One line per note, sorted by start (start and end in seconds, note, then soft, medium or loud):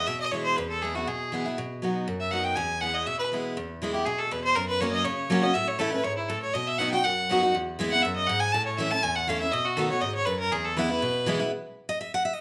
0.07 0.55 B2 medium
0.07 0.20 E5 medium
0.21 0.33 D#5 medium
0.32 0.56 E3 medium
0.32 0.57 G#3 medium
0.32 0.57 B3 medium
0.32 0.57 E4 medium
0.32 0.43 C#5 medium
0.44 0.57 C5 medium
0.56 1.05 E2 medium
0.56 0.69 B4 medium
0.69 0.83 A4 medium
0.82 0.95 E3 medium
0.82 0.95 G#3 soft
0.82 0.96 B3 medium
0.82 0.94 E4 medium
0.82 0.96 G#4 medium
0.95 1.08 B3 medium
0.95 1.07 E4 medium
0.95 1.09 F#4 medium
1.07 1.55 B2 medium
1.07 1.45 G#4 medium
1.32 1.45 E3 medium
1.32 1.45 G#3 medium
1.32 1.45 B3 medium
1.32 1.44 E4 medium
1.45 1.58 B3 soft
1.45 1.57 E4 medium
1.58 2.05 B2 medium
1.82 2.06 F#3 medium
1.82 2.06 B3 medium
1.82 2.07 D#4 medium
1.82 2.07 F#4 medium
2.08 2.55 F#2 medium
2.20 2.32 E5 medium
2.31 2.55 F#3 medium
2.31 2.56 B3 medium
2.31 2.56 D#4 medium
2.31 2.57 F#4 medium
2.31 2.45 F#5 loud
2.44 2.57 G5 medium
2.56 3.04 E2 medium
2.56 2.82 G#5 medium
2.81 3.05 E3 medium
2.81 3.06 G#3 medium
2.81 3.06 B3 medium
2.81 3.06 E4 medium
2.81 2.96 F#5 medium
2.95 3.08 D#5 medium
3.06 3.54 B2 medium
3.06 3.18 E5 medium
3.19 3.26 B4 medium
3.32 3.55 E3 medium
3.32 3.56 G#3 medium
3.32 3.56 B3 medium
3.32 3.56 E4 medium
3.57 4.04 E2 medium
3.82 3.94 E3 medium
3.82 3.94 G#3 medium
3.82 3.95 B3 medium
3.82 3.93 E4 medium
3.93 4.06 B3 soft
3.93 4.05 E4 medium
3.93 4.07 G4 medium
4.05 4.54 B2 medium
4.05 4.20 G#4 medium
4.19 4.33 A4 medium
4.31 4.55 E2 medium
4.31 4.44 B4 medium
4.44 4.56 C5 loud
4.55 5.03 F#2 medium
4.55 4.68 A#4 medium
4.68 4.82 B4 medium
4.80 5.04 F#3 medium
4.80 5.05 A#3 medium
4.80 5.05 C#4 medium
4.80 5.06 F#4 medium
4.80 4.92 C#5 medium
4.92 5.06 D#5 loud
5.04 5.53 C#3 medium
5.04 5.44 C#5 medium
5.30 5.43 F#3 medium
5.30 5.43 A#3 loud
5.30 5.43 C#4 medium
5.30 5.41 F#4 loud
5.42 5.56 C#4 medium
5.42 5.54 F#4 medium
5.42 5.55 D#5 medium
5.54 6.02 A2 medium
5.54 5.69 E5 medium
5.68 5.80 C#5 medium
5.79 5.92 E3 medium
5.79 5.92 A3 medium
5.79 5.93 C#4 medium
5.79 5.91 E4 medium
5.79 5.91 A4 medium
5.92 6.05 C#4 medium
5.92 6.04 E4 medium
5.92 6.05 B4 medium
6.04 6.28 G#2 medium
6.04 6.16 C#5 loud
6.17 6.30 E4 medium
6.29 6.53 A2 medium
6.29 6.42 A4 medium
6.42 6.55 C#5 medium
6.53 7.02 B2 medium
6.53 6.69 D#5 medium
6.67 6.80 E5 medium
6.78 6.92 F#3 medium
6.78 6.92 B3 medium
6.78 6.93 D#4 medium
6.78 6.91 F#4 loud
6.78 6.91 F#5 loud
6.91 7.05 D#4 medium
6.91 7.04 F#4 medium
6.91 7.05 G5 loud
7.04 7.52 F#2 medium
7.04 7.54 F#5 loud
7.29 7.42 F#3 medium
7.29 7.42 B3 medium
7.29 7.43 D#4 loud
7.29 7.41 F#4 loud
7.43 7.55 D#4 soft
7.43 7.54 F#4 medium
7.55 8.02 E2 medium
7.79 7.91 E3 medium
7.79 7.92 G#3 medium
7.79 7.92 B3 medium
7.79 7.91 E4 loud
7.91 8.04 B3 soft
7.91 8.03 E4 medium
7.91 8.04 F#5 loud
8.02 8.28 F#2 medium
8.02 8.15 E5 medium
8.16 8.28 D#5 medium
8.27 8.52 G#2 medium
8.27 8.41 F#5 medium
8.40 8.54 G#5 loud
8.52 9.01 A2 medium
8.52 8.65 A5 loud
8.66 8.79 C#5 medium
8.78 8.91 E3 medium
8.78 8.91 A3 medium
8.78 8.91 C#4 loud
8.78 8.91 E4 medium
8.78 8.92 E5 medium
8.91 9.04 C#4 soft
8.91 9.03 E4 medium
8.91 9.04 A5 loud
9.03 9.51 E2 medium
9.03 9.17 G#5 loud
9.16 9.30 F#5 medium
9.28 9.40 E3 medium
9.28 9.41 A3 medium
9.28 9.41 C#4 medium
9.28 9.39 E4 loud
9.28 9.40 F5 medium
9.40 9.53 C#4 soft
9.40 9.52 E4 medium
9.40 9.53 E5 medium
9.51 10.00 B2 medium
9.51 9.66 D#5 medium
9.65 9.78 F#4 medium
9.76 9.90 D#3 medium
9.76 9.90 A3 medium
9.76 9.90 B3 medium
9.76 9.89 F#4 loud
9.76 9.88 A4 medium
9.89 10.03 B3 soft
9.89 10.02 F#4 medium
9.89 10.02 C#5 medium
10.01 10.25 G#2 medium
10.01 10.14 D#5 medium
10.15 10.27 C#5 loud
10.25 10.50 F#2 medium
10.25 10.39 B4 medium
10.40 10.53 A#4 loud
10.52 10.99 E2 medium
10.52 10.66 G#4 medium
10.65 10.78 A4 medium
10.77 10.89 E3 medium
10.77 10.89 G#3 medium
10.77 10.90 B3 medium
10.77 10.89 E4 loud
10.77 10.89 B4 medium
10.90 11.02 B3 soft
10.90 11.01 E4 medium
10.90 11.41 B4 loud
11.02 11.49 B2 medium
11.26 11.39 E3 medium
11.26 11.39 G#3 loud
11.26 11.40 B3 loud
11.26 11.38 E4 loud
11.39 11.52 B3 medium
11.39 11.51 E4 medium
11.89 12.00 D#5 loud
12.01 12.13 E5 medium
12.14 12.25 F#5 loud
12.25 12.33 E5 medium
12.33 12.41 D#5 medium